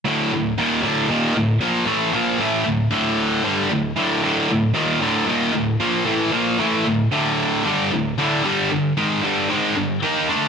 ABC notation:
X:1
M:4/4
L:1/8
Q:1/4=114
K:none
V:1 name="Distorted electric guitar" clef=bass
[D,,A,,D,] [D,,A,,] [_E,,_B,,_E,] [D,,A,,D,] [E,,B,,E,] [D,,A,,] [B,,F,_B,] [A,,=E,A,] | [_B,,F,_B,] [A,,E,A,] [D,,A,,] [D,,A,,D,]2 [G,,D,G,] [D,,A,,] [D,,A,,D,] | [D,,A,,D,] [D,,A,,] [_E,,_B,,_E,] [D,,A,,D,] [E,,B,,E,] [D,,A,,] [B,,F,_B,] [A,,=E,A,] | [_B,,F,_B,] [A,,E,A,] [D,,A,,] [D,,A,,D,]2 [G,,D,G,] [D,,A,,] [D,,A,,D,] |
[G,,D,G,] [G,,D,] [^G,,_E,^G,] [=G,,D,=G,] [^G,,E,^G,] [=G,,D,] [E,_B,_E] [D,A,D] |]